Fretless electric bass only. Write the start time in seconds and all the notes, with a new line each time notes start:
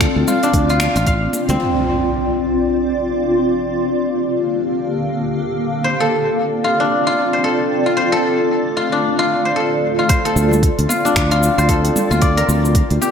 0.16 D2
0.54 D2
0.96 A1
1.49 D2
10.36 D2
10.79 D2
11.16 D2
11.58 D2
12.11 D2
12.48 D2
12.91 D2